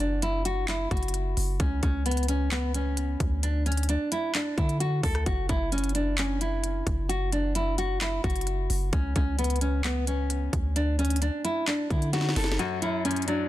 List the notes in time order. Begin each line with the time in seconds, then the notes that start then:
Already playing: F#1
0.00 D4, closed hi-hat
0.22 E4, closed hi-hat
0.45 F#4, closed hi-hat
0.68 E4, clap, closed hi-hat
0.91 F#1 F#4, kick, closed hi-hat
0.97 closed hi-hat
1.03 closed hi-hat
1.08 closed hi-hat
1.14 closed hi-hat
1.37 F#1, open hi-hat
1.60 C#2 C#4, kick, closed hi-hat
1.83 C#2 C#4, kick, closed hi-hat
2.06 B3, closed hi-hat
2.11 closed hi-hat
2.17 closed hi-hat
2.23 closed hi-hat
2.29 C#4, closed hi-hat
2.51 B3, clap, closed hi-hat
2.74 C#4, closed hi-hat
2.97 closed hi-hat
3.20 D2, kick, closed hi-hat
3.43 D4, closed hi-hat
3.66 C#4, closed hi-hat
3.72 closed hi-hat
3.77 closed hi-hat
3.83 closed hi-hat
3.89 D4, closed hi-hat
4.12 E4, closed hi-hat
4.35 D4, clap, closed hi-hat
4.58 D3 E4, kick, closed hi-hat
4.69 closed hi-hat
4.80 F#4, closed hi-hat
5.03 D2 A4, kick, closed hi-hat, open hi-hat
5.15 cross-stick, closed hi-hat
5.26 F#1 F#4, kick, closed hi-hat
5.49 F#1 E4, kick, closed hi-hat
5.72 C#4, closed hi-hat
5.78 closed hi-hat
5.84 closed hi-hat
5.89 closed hi-hat
5.95 D4, closed hi-hat
6.18 C#4, clap, closed hi-hat
6.41 E4, closed hi-hat
6.64 closed hi-hat
6.87 F#1, kick, closed hi-hat
7.09 F#4, closed hi-hat
7.32 D4, closed hi-hat
7.55 E4, closed hi-hat
7.78 F#4, closed hi-hat
8.01 E4, clap, closed hi-hat
8.24 F#1 F#4, kick, closed hi-hat
8.30 closed hi-hat
8.36 closed hi-hat
8.41 closed hi-hat
8.47 closed hi-hat
8.70 F#1, open hi-hat
8.93 C#2 C#4, kick, closed hi-hat
9.16 C#2 C#4, kick, closed hi-hat
9.39 B3, closed hi-hat
9.44 closed hi-hat
9.50 closed hi-hat
9.56 closed hi-hat
9.61 C#4, closed hi-hat
9.84 B3, clap, closed hi-hat
10.07 C#4, closed hi-hat
10.30 closed hi-hat
10.53 D2, kick, closed hi-hat
10.76 D4, closed hi-hat
10.99 C#4, closed hi-hat
11.05 closed hi-hat
11.10 closed hi-hat
11.16 closed hi-hat
11.22 D4, closed hi-hat
11.45 E4, closed hi-hat
11.67 D4, clap, closed hi-hat
11.90 D3 E4, kick, closed hi-hat
12.02 closed hi-hat
12.13 F#4, snare, closed hi-hat
12.21 snare
12.29 snare
12.36 F#1 A4, snare, closed hi-hat, open hi-hat
12.44 snare, closed hi-hat
12.52 snare
12.59 F#2 F#4, closed hi-hat
12.82 F#2 E4, closed hi-hat
13.05 F#2 C#4, closed hi-hat
13.11 closed hi-hat
13.16 closed hi-hat
13.22 closed hi-hat
13.28 F#3 D4, closed hi-hat